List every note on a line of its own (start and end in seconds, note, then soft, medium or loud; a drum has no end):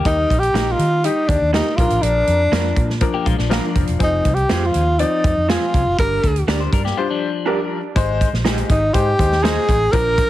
0.00 0.17 A#3 medium
0.00 0.16 G4 medium
0.05 0.24 D#2 loud
0.05 0.36 G3 medium
0.05 0.36 D#4 medium
0.05 0.41 D#4 medium
0.05 0.36 A#4 medium
0.05 kick loud
0.05 closed hi-hat medium
0.30 0.49 A#1 medium
0.30 kick medium
0.30 closed hi-hat medium
0.39 0.74 G4 loud
0.39 closed hi-hat soft
0.54 0.73 A#1 medium
0.54 0.85 G3 medium
0.54 0.66 A#3 medium
0.54 0.66 D#4 medium
0.54 0.86 D#4 medium
0.54 0.66 G4 medium
0.54 0.86 A#4 medium
0.54 0.67 A#4 medium
0.54 snare loud
0.54 closed hi-hat loud
0.72 1.06 F4 medium
0.79 1.07 D#3 medium
0.79 closed hi-hat medium
1.04 1.35 G3 medium
1.04 1.35 D#4 medium
1.04 1.31 D#4 medium
1.04 1.35 G4 medium
1.04 closed hi-hat medium
1.29 1.38 D#2 medium
1.29 1.53 D4 medium
1.29 kick medium
1.29 closed hi-hat medium
1.41 1.60 D#2 medium
1.53 1.79 G3 medium
1.53 1.65 A#3 medium
1.53 1.65 D#4 medium
1.53 1.78 D#4 medium
1.53 1.79 D#4 medium
1.53 1.65 G4 medium
1.53 1.79 A#4 medium
1.53 1.66 A#4 medium
1.53 snare loud
1.53 closed hi-hat medium
1.76 1.88 A#1 medium
1.76 2.38 F3 medium
1.76 2.38 D4 medium
1.76 2.04 F4 medium
1.76 2.39 A#4 medium
1.76 kick medium
1.76 closed hi-hat medium
1.90 2.00 A1 medium
1.90 closed hi-hat medium
2.02 2.22 A#1 loud
2.02 3.02 D4 medium
2.02 closed hi-hat medium
2.27 2.47 F2 medium
2.27 closed hi-hat medium
2.52 2.71 F2 medium
2.52 2.83 F3 medium
2.52 2.64 A#3 medium
2.52 2.64 D4 medium
2.52 2.83 D4 medium
2.52 2.64 F4 medium
2.52 2.84 A#4 medium
2.52 2.65 A#4 medium
2.52 snare loud
2.52 closed hi-hat medium
2.76 3.05 A#2 medium
2.76 kick medium
2.76 closed hi-hat medium
2.90 snare soft
3.01 3.32 F3 medium
3.01 3.32 D4 medium
3.01 3.33 A#4 medium
3.01 kick medium
3.01 closed hi-hat medium
3.14 3.26 A#3 medium
3.14 3.26 G4 medium
3.26 3.36 A#1 medium
3.26 3.38 G#3 medium
3.26 3.38 F4 medium
3.26 kick medium
3.26 closed hi-hat medium
3.38 3.58 A#1 medium
3.38 3.98 F3 medium
3.38 3.97 D4 medium
3.38 snare soft
3.49 3.81 F3 medium
3.49 3.63 A#3 medium
3.49 3.81 D4 medium
3.49 3.63 D4 medium
3.49 3.63 F4 medium
3.49 3.81 A#4 medium
3.49 3.64 A#4 medium
3.49 3.97 F5 medium
3.49 snare loud
3.49 closed hi-hat medium
3.75 3.85 F1 medium
3.75 kick medium
3.75 closed hi-hat medium
3.87 3.98 E1 medium
3.87 closed hi-hat medium
3.99 4.19 F1 medium
3.99 4.31 F3 medium
3.99 4.31 C4 medium
3.99 4.36 D#4 medium
3.99 4.31 G#4 medium
3.99 kick loud
3.99 closed hi-hat medium
4.25 4.44 C2 medium
4.25 kick medium
4.25 closed hi-hat medium
4.35 4.68 G4 medium
4.35 closed hi-hat soft
4.49 4.69 F2 medium
4.49 4.81 F3 medium
4.49 4.61 C4 medium
4.49 4.81 C4 medium
4.49 4.62 F4 medium
4.49 4.81 F4 medium
4.49 4.62 G#4 medium
4.49 4.62 C5 medium
4.49 snare loud
4.49 closed hi-hat loud
4.66 5.01 F4 medium
4.74 5.03 D#2 medium
4.74 closed hi-hat medium
4.99 5.30 F3 medium
4.99 5.30 C4 medium
4.99 5.50 D#4 medium
4.99 5.30 D5 medium
4.99 closed hi-hat medium
5.24 5.34 F2 medium
5.24 kick medium
5.24 closed hi-hat medium
5.37 5.56 F2 medium
5.49 5.80 F3 medium
5.49 5.60 C4 medium
5.49 5.80 C4 medium
5.49 5.98 F4 medium
5.49 5.61 F4 medium
5.49 5.80 G#4 medium
5.49 5.61 G#4 medium
5.49 5.61 C5 medium
5.49 snare loud
5.49 closed hi-hat medium
5.74 5.83 C2 medium
5.74 kick medium
5.74 closed hi-hat medium
5.86 5.96 F#1 medium
5.98 6.17 G1 medium
5.98 6.29 G3 medium
5.98 6.29 D4 medium
5.98 6.45 A#4 medium
5.98 6.30 A#4 medium
5.98 kick loud
5.98 closed hi-hat medium
6.24 6.42 D2 medium
6.24 kick medium
6.24 closed hi-hat medium
6.36 closed hi-hat soft
6.47 6.67 D2 medium
6.47 6.78 G3 medium
6.47 6.59 D4 medium
6.47 6.60 D4 medium
6.47 6.79 D4 medium
6.47 6.60 G4 medium
6.47 6.79 A#4 medium
6.47 6.60 A#4 medium
6.47 6.60 D5 medium
6.47 snare loud
6.47 closed hi-hat medium
6.60 6.72 C5 medium
6.73 6.92 G2 medium
6.73 6.85 D4 medium
6.73 6.84 A#4 medium
6.73 kick medium
6.73 closed hi-hat medium
6.85 6.97 A#3 medium
6.85 6.97 G4 medium
6.85 snare soft
6.97 7.28 G3 medium
6.97 7.28 D4 medium
6.97 7.09 F4 medium
6.97 7.28 C5 medium
7.10 7.80 F3 medium
7.10 7.80 D4 medium
7.46 7.77 G3 medium
7.46 7.57 D4 medium
7.46 7.77 D4 medium
7.46 7.58 G4 medium
7.46 7.77 A#4 medium
7.46 7.58 A#4 medium
7.46 7.59 D5 medium
7.96 8.24 G#1 loud
7.96 8.26 G#3 loud
7.96 8.26 D#4 medium
7.96 8.27 C5 loud
7.96 kick loud
7.96 closed hi-hat medium
8.21 kick medium
8.21 closed hi-hat medium
8.33 8.61 A#1 medium
8.33 snare soft
8.45 8.76 G#3 medium
8.45 8.56 D#4 medium
8.45 8.76 D#4 medium
8.45 8.76 G4 medium
8.45 8.57 G#4 medium
8.45 8.57 C5 medium
8.45 8.57 D#5 medium
8.45 snare loud
8.45 closed hi-hat loud
8.58 closed hi-hat medium
8.70 8.89 G#1 medium
8.70 8.95 D#4 medium
8.70 kick medium
8.70 closed hi-hat medium
8.93 9.13 G#2 medium
8.93 9.09 G#3 medium
8.93 9.09 D#4 medium
8.93 9.45 G4 medium
8.93 9.10 C5 medium
8.93 kick medium
8.93 closed hi-hat medium
9.19 9.57 D#2 medium
9.19 9.34 G#3 medium
9.19 9.34 D#4 medium
9.19 9.34 C5 medium
9.19 kick medium
9.19 closed hi-hat medium
9.32 snare soft
9.43 9.74 G#3 medium
9.43 9.55 D#4 medium
9.43 9.74 D#4 medium
9.43 9.93 G#4 medium
9.43 9.55 G#4 medium
9.43 9.74 C5 medium
9.43 9.55 C5 medium
9.43 9.56 D#5 medium
9.43 snare loud
9.43 closed hi-hat medium
9.68 9.87 A1 medium
9.68 kick medium
9.68 closed hi-hat medium
9.92 10.21 A#1 loud
9.92 10.23 F3 medium
9.92 10.23 D4 medium
9.92 10.30 A#4 loud
9.92 10.24 A#4 loud
9.92 kick medium
9.92 closed hi-hat medium
10.18 kick medium
10.18 closed hi-hat medium